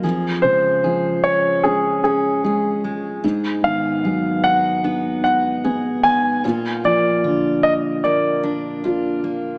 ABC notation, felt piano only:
X:1
M:4/4
L:1/8
Q:1/4=75
K:Dbmix
V:1 name="Felt piano" clef=bass
F,, D, F,2 D2 A,2 | A,, E, G,2 E2 C2 | B,, F, =D,2 B2 F2 |]